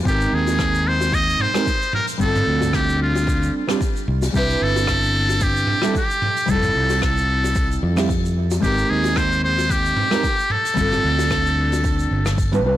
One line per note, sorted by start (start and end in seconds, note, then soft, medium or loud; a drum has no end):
0.03 0.26 G#1 loud
0.03 1.50 G#3 medium
0.03 1.50 C4 medium
0.03 1.51 D#4 medium
0.03 kick loud
0.03 open hi-hat medium
0.03 shaker medium
0.07 0.36 G4 medium
0.07 1.52 A#4 medium
0.07 1.52 G5 medium
0.21 shaker medium
0.33 1.34 D#2 medium
0.33 0.89 G#4 loud
0.47 open hi-hat medium
0.47 high bongo medium
0.47 shaker medium
0.59 kick loud
0.59 cross-stick medium
0.59 open hi-hat medium
0.59 shaker medium
0.74 shaker medium
0.88 1.16 C5 loud
1.01 open hi-hat medium
1.01 high bongo medium
1.01 shaker medium
1.12 1.43 D#5 loud
1.12 kick loud
1.12 open hi-hat medium
1.12 shaker medium
1.29 shaker medium
1.39 1.94 C5 loud
1.39 mid tom medium
1.54 1.67 G#3 medium
1.54 1.67 C4 medium
1.54 1.68 D#4 medium
1.54 1.68 G4 medium
1.54 1.68 A#4 medium
1.54 cross-stick medium
1.54 open hi-hat medium
1.54 high bongo medium
1.54 shaker medium
1.66 kick loud
1.66 open hi-hat medium
1.66 shaker medium
1.82 shaker soft
1.93 2.07 A#4 medium
1.93 mid tom medium
2.07 open hi-hat medium
2.07 shaker medium
2.18 2.40 G1 loud
2.18 3.64 G3 medium
2.18 3.65 C4 medium
2.18 3.66 D4 medium
2.18 kick loud
2.18 open hi-hat medium
2.18 shaker medium
2.22 3.66 F4 medium
2.22 2.77 A4 loud
2.22 3.67 A4 medium
2.35 mid tom medium
2.35 shaker soft
2.47 3.49 D2 medium
2.61 mid tom medium
2.61 open hi-hat medium
2.61 high bongo medium
2.61 shaker medium
2.73 3.01 G4 medium
2.73 kick loud
2.73 cross-stick medium
2.73 open hi-hat medium
2.73 shaker medium
2.89 shaker medium
3.02 3.51 F4 medium
3.15 open hi-hat medium
3.15 high bongo medium
3.15 shaker medium
3.27 kick loud
3.27 open hi-hat medium
3.27 shaker medium
3.43 shaker soft
3.67 3.81 G3 medium
3.67 3.81 C4 medium
3.67 3.82 D4 medium
3.67 3.82 F4 medium
3.67 3.83 G4 medium
3.67 cross-stick medium
3.67 open hi-hat medium
3.67 shaker medium
3.81 kick loud
3.81 open hi-hat medium
3.81 shaker medium
3.96 shaker soft
4.08 4.28 C2 loud
4.22 open hi-hat medium
4.22 high bongo medium
4.22 shaker medium
4.32 4.54 C2 loud
4.32 5.78 G3 medium
4.32 5.79 C4 medium
4.32 5.80 D4 medium
4.32 kick loud
4.32 open hi-hat medium
4.32 shaker medium
4.36 5.80 E4 medium
4.36 4.64 G4 loud
4.36 5.81 B4 medium
4.50 shaker medium
4.62 5.63 G1 medium
4.62 5.45 A4 loud
4.76 open hi-hat medium
4.76 high bongo medium
4.76 shaker medium
4.87 kick loud
4.87 cross-stick medium
4.87 open hi-hat medium
4.87 shaker medium
5.03 shaker medium
5.29 open hi-hat medium
5.29 high bongo soft
5.29 shaker medium
5.40 5.96 G4 loud
5.40 kick loud
5.40 open hi-hat medium
5.40 shaker medium
5.57 shaker soft
5.67 mid tom medium
5.82 5.95 G3 medium
5.82 5.96 C4 medium
5.82 5.96 D4 medium
5.82 5.96 E4 medium
5.82 5.97 A4 medium
5.82 cross-stick medium
5.82 open hi-hat medium
5.82 high bongo medium
5.82 shaker medium
5.95 6.52 G4 loud
5.95 kick loud
5.95 open hi-hat medium
5.95 shaker medium
6.10 shaker medium
6.22 mid tom medium
6.37 open hi-hat medium
6.37 shaker medium
6.46 6.69 F1 loud
6.46 7.92 G3 medium
6.46 7.93 C4 medium
6.46 7.94 E4 medium
6.46 kick loud
6.46 open hi-hat medium
6.46 shaker medium
6.50 7.95 F4 medium
6.50 7.03 A4 loud
6.50 7.95 A4 medium
6.63 mid tom medium
6.63 shaker medium
6.76 7.77 C2 medium
6.90 open hi-hat medium
6.90 high bongo medium
6.90 shaker medium
7.02 7.79 A4 medium
7.02 kick medium
7.02 cross-stick medium
7.02 open hi-hat medium
7.02 shaker medium
7.17 shaker soft
7.44 open hi-hat medium
7.44 high bongo soft
7.44 shaker medium
7.55 kick loud
7.55 open hi-hat medium
7.55 shaker medium
7.71 shaker soft
7.83 8.58 F2 medium
7.96 8.10 G3 medium
7.96 8.10 C4 medium
7.96 8.11 E4 medium
7.96 8.11 F4 medium
7.96 8.11 G4 loud
7.96 cross-stick medium
7.96 open hi-hat medium
7.96 shaker medium
8.09 kick loud
8.09 open hi-hat medium
8.09 shaker medium
8.25 shaker medium
8.50 open hi-hat medium
8.50 high bongo medium
8.50 shaker medium
8.60 8.83 G#1 loud
8.60 10.07 G#3 medium
8.60 10.07 C4 medium
8.60 10.08 D#4 medium
8.60 8.91 G4 loud
8.60 kick loud
8.60 open hi-hat medium
8.60 shaker medium
8.65 10.09 G4 medium
8.65 10.09 A#4 medium
8.78 shaker soft
8.90 9.92 D#2 medium
8.90 9.19 G#4 loud
9.04 open hi-hat medium
9.04 high bongo medium
9.04 shaker medium
9.15 9.44 C5 loud
9.15 kick loud
9.15 cross-stick medium
9.15 open hi-hat medium
9.15 shaker medium
9.32 shaker soft
9.44 9.73 C5 loud
9.58 open hi-hat medium
9.58 high bongo soft
9.58 shaker medium
9.70 10.53 G4 medium
9.70 kick loud
9.70 open hi-hat medium
9.70 shaker medium
9.85 shaker soft
9.96 mid tom medium
10.10 10.24 G#3 medium
10.10 10.24 C4 medium
10.10 10.25 D#4 medium
10.10 10.25 G4 medium
10.10 10.25 A#4 medium
10.10 cross-stick medium
10.10 open hi-hat medium
10.10 high bongo medium
10.10 shaker medium
10.23 kick loud
10.23 open hi-hat medium
10.23 shaker medium
10.39 shaker soft
10.50 12.39 A4 loud
10.50 mid tom medium
10.65 open hi-hat medium
10.65 shaker medium
10.74 10.97 G1 loud
10.74 12.21 G3 medium
10.74 12.22 C4 medium
10.74 12.22 D4 medium
10.74 kick loud
10.74 open hi-hat medium
10.74 shaker medium
10.78 12.23 F4 medium
10.78 12.24 A4 medium
10.92 mid tom medium
10.92 high bongo soft
10.92 shaker medium
11.04 12.06 D2 medium
11.19 open hi-hat medium
11.19 high bongo medium
11.19 shaker medium
11.30 kick medium
11.30 cross-stick medium
11.30 shaker medium
11.46 shaker soft
11.72 open hi-hat medium
11.72 high bongo soft
11.72 shaker medium
11.83 kick loud
11.83 open hi-hat medium
11.83 shaker medium
11.99 shaker medium
12.11 12.65 G1 medium
12.26 cross-stick medium
12.26 open hi-hat medium
12.26 shaker medium
12.38 kick loud
12.38 open hi-hat medium
12.38 shaker medium
12.52 12.61 G3 medium
12.52 12.62 C4 medium
12.52 12.62 D4 medium
12.52 12.62 F4 medium
12.52 12.63 B4 loud
12.52 mid tom medium
12.52 shaker medium
12.64 12.76 C2 loud
12.64 12.77 G3 medium
12.64 12.77 C4 medium
12.64 12.77 D4 medium
12.64 12.77 F4 medium
12.64 12.77 B4 medium